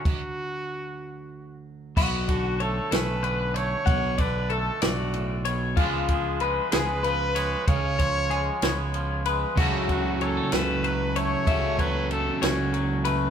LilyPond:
<<
  \new Staff \with { instrumentName = "Clean electric guitar" } { \time 6/8 \key b \minor \tempo 4. = 63 r2. | fis'4 cis''8 a'8 b'8 cis''8 | fis''8 d''8 a'8 d''4 cis''8 | eis'4 b'8 gis'8 b'8 cis''8 |
eis''8 cis''8 gis'8 cis''4 b'8 | fis'4 cis''8 a'8 b'8 cis''8 | e''8 cis''8 a'8 cis''4 b'8 | }
  \new Staff \with { instrumentName = "Trumpet" } { \time 6/8 \key b \minor fis'2~ fis'8 r8 | r8 fis'8 a'8 b'4 cis''8~ | cis''8 b'8 a'8 fis'4 r8 | r8 gis'8 b'8 b'4. |
cis''2 r4 | r8 fis'8 a'8 b'4 cis''8~ | cis''8 b'8 a'8 fis'4 r8 | }
  \new Staff \with { instrumentName = "Overdriven electric guitar" } { \time 6/8 \key b \minor r2. | r2. | r2. | r2. |
r2. | <cis fis cis' fis' a'>2. | <cis fis cis' fis' a'>2. | }
  \new Staff \with { instrumentName = "Clean electric guitar" } { \clef bass \time 6/8 \key b \minor << { fis2. | r4 a8 cis'4 a8 | r4 a2 | <eis gis b d'>4 gis8 b4 gis8 |
r4 gis8 b4 gis8 | <fis a cis' e'>4 fis16 a16 cis'4 a8 | r4 a8 cis'4 a8 | } \\ { d,2. | b,8 d4. d4 | b,8 d4 g,8 a,8 b,8 | cis8 eis4. eis4 |
cis8 eis4. eis4 | cis8 fis4. fis4 | cis8 fis4. fis4 | } >> }
  \new Staff \with { instrumentName = "Fingered electric bass" } { \clef bass \time 6/8 \key b \minor r2. | b,,4. b,,4. | b,,4. b,,4. | cis,4. cis,4. |
cis,4. cis,4. | cis,4. cis,4. | cis,4. cis,4. | }
  \new DrumStaff \with { instrumentName = "Drums" } \drummode { \time 6/8 <cymc bd>4. r4. | <cymc bd>8 <bd cymr>8 cymr8 <cymr sn>8 cymr8 cymr8 | <bd cymr>8 <bd cymr>8 cymr8 <cymr sn>8 cymr8 cymr8 | <cymc bd>8 <bd cymr>8 cymr8 <cymr sn>8 cymr8 cymr8 |
<bd cymr>8 <bd cymr>8 cymr8 <cymr sn>8 cymr8 cymr8 | <cymc bd>8 <bd cymr>8 cymr8 <cymr sn>8 cymr8 cymr8 | <bd cymr>8 <bd cymr>8 cymr8 <cymr sn>8 cymr8 cymr8 | }
>>